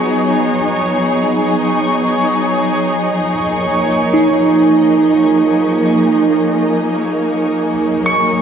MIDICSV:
0, 0, Header, 1, 4, 480
1, 0, Start_track
1, 0, Tempo, 500000
1, 8081, End_track
2, 0, Start_track
2, 0, Title_t, "Synth texture"
2, 0, Program_c, 0, 99
2, 0, Note_on_c, 0, 73, 83
2, 0, Note_on_c, 0, 85, 79
2, 8081, Note_off_c, 0, 73, 0
2, 8081, Note_off_c, 0, 85, 0
2, 8081, End_track
3, 0, Start_track
3, 0, Title_t, "Tine electric piano"
3, 0, Program_c, 1, 4
3, 0, Control_c, 1, 64, 127
3, 0, Note_on_c, 1, 65, 59
3, 514, Note_off_c, 1, 65, 0
3, 3063, Control_c, 1, 64, 0
3, 3204, Control_c, 1, 64, 127
3, 3970, Note_on_c, 1, 63, 57
3, 7410, Control_c, 1, 64, 0
3, 7590, Control_c, 1, 64, 127
3, 7739, Note_on_c, 1, 85, 73
3, 8081, Note_off_c, 1, 63, 0
3, 8081, Note_off_c, 1, 85, 0
3, 8081, End_track
4, 0, Start_track
4, 0, Title_t, "String section"
4, 0, Program_c, 2, 48
4, 0, Note_on_c, 2, 54, 80
4, 0, Note_on_c, 2, 59, 60
4, 0, Note_on_c, 2, 63, 64
4, 0, Note_on_c, 2, 68, 72
4, 0, Note_on_c, 2, 75, 59
4, 3033, Note_on_c, 2, 53, 72
4, 3044, Note_off_c, 2, 59, 0
4, 3053, Note_off_c, 2, 54, 0
4, 3305, Note_on_c, 2, 58, 66
4, 7387, Note_on_c, 2, 54, 82
4, 7389, Note_off_c, 2, 53, 0
4, 8081, Note_off_c, 2, 54, 0
4, 8081, Note_off_c, 2, 58, 0
4, 8081, Note_off_c, 2, 63, 0
4, 8081, Note_off_c, 2, 68, 0
4, 8081, Note_off_c, 2, 75, 0
4, 8081, End_track
0, 0, End_of_file